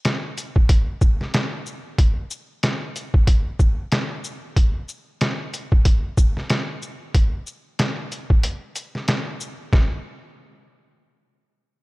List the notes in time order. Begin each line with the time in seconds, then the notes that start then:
0.05 snare, closed hi-hat
0.38 closed hi-hat, shaker
0.56 kick
0.69 kick, closed hi-hat
1.01 kick, shaker
1.21 snare
1.34 snare, closed hi-hat
1.66 shaker
1.98 kick, closed hi-hat
2.31 shaker
2.63 snare, closed hi-hat
2.96 closed hi-hat, shaker
3.14 kick
3.27 kick, closed hi-hat
3.59 kick, shaker
3.92 snare, closed hi-hat
4.24 shaker
4.56 kick, closed hi-hat
4.89 shaker
5.21 snare, closed hi-hat
5.54 closed hi-hat, shaker
5.72 kick
5.85 kick, closed hi-hat
6.17 kick, shaker
6.37 snare
6.50 snare, closed hi-hat
6.82 shaker
7.15 kick, closed hi-hat
7.47 shaker
7.79 snare, closed hi-hat
8.12 closed hi-hat, shaker
8.30 kick
8.43 closed hi-hat
8.76 closed hi-hat, shaker
8.95 snare
9.08 snare, closed hi-hat
9.40 shaker
9.73 kick, snare